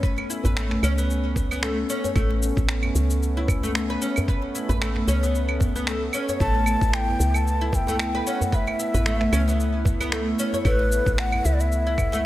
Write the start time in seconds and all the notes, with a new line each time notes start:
Already playing: A3 B3 C#4
0.03 B4, kick, shaker
0.18 djembe slap, claves
0.30 E4, shaker
0.44 A1 B4, djembe bass, shaker
0.57 A3, finger snap, shaker
0.71 finger snap, djembe tone
0.83 C#2 C#4, djembe slap, claves, shaker
0.98 B3, djembe slap, shaker
1.10 shaker
1.36 kick, djembe bass, shaker
1.51 B3, claves, shaker
1.63 A3, finger snap, shaker
1.90 C#4, shaker
2.04 C#5, djembe tone, shaker
2.16 A1 A3, kick, claves, shaker
2.31 djembe slap
2.43 shaker
2.57 A1, kick, shaker
2.69 finger snap, shaker
2.83 djembe tone, claves
2.95 C#2, djembe slap, shaker
3.10 djembe slap, shaker
3.23 shaker
3.37 E4
3.48 kick, djembe slap, djembe bass, claves, shaker
3.63 A3, djembe slap, djembe tone, shaker
3.75 finger snap, shaker
3.90 B4
4.02 C#4, shaker
4.16 djembe bass, claves, shaker
4.28 B4, kick, shaker
4.42 djembe slap
4.55 E4, shaker
4.69 A1 B4, djembe bass, shaker
4.82 A3, finger snap, claves, shaker
4.95 finger snap, djembe tone
5.07 C#2 C#4, djembe slap, shaker
5.23 B3, djembe slap, shaker
5.35 shaker
5.49 claves
5.60 kick, djembe bass, shaker
5.76 B3, shaker
5.87 A3, finger snap, shaker
6.13 C#4, claves, shaker
6.29 C#5, djembe tone, shaker
6.40 A1 A3 E4 A5, kick, shaker
6.55 djembe slap
6.66 claves, shaker
6.81 A1, kick, shaker
6.93 G5, finger snap, shaker
7.08 djembe tone
7.19 C#2, djembe slap, shaker
7.34 A5, djembe slap, claves, shaker
7.47 shaker
7.61 E4
7.72 G5, kick, djembe slap, djembe bass, shaker
7.87 A3, djembe slap, djembe tone, shaker
7.99 finger snap, claves, shaker
8.15 B4
8.27 C#4 F#5, shaker
8.41 djembe bass, shaker
8.52 B4 E5, kick, shaker
8.67 djembe slap, claves
8.79 E4, shaker
8.94 A1 B4, djembe bass, shaker
9.06 A3, finger snap, shaker
9.21 finger snap, djembe tone
9.32 C#2 C#4, djembe slap, claves, shaker
9.48 B3, djembe slap, shaker
9.60 shaker
9.85 kick, djembe bass, shaker
10.01 B3, claves, shaker
10.12 A3, finger snap, shaker
10.39 C#4, shaker
10.53 C#5, djembe tone, shaker
10.65 A1 A3 B4, kick, claves, shaker
10.79 djembe slap
10.92 shaker
11.06 A1, kick, shaker
11.18 F#5, finger snap, shaker
11.32 djembe tone, claves
11.44 C#2 E5, djembe slap, shaker
11.53 D5
11.59 E5, djembe slap, shaker
11.72 shaker
11.87 E4
11.98 kick, djembe slap, djembe bass, claves, shaker
12.12 A3, djembe slap, djembe tone, shaker